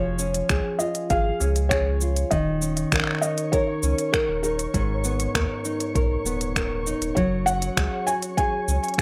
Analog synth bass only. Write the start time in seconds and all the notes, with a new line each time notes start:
Already playing: F1
0.50 C#2
1.10 G#1
1.41 C#2
1.71 C#2
2.31 D#1
2.92 A#1
3.83 C#2
4.29 D#1
4.74 G#1
5.35 D#2
5.96 B1
6.25 D#1
7.01 D#1
7.17 F#1
7.77 C#2
8.68 C#2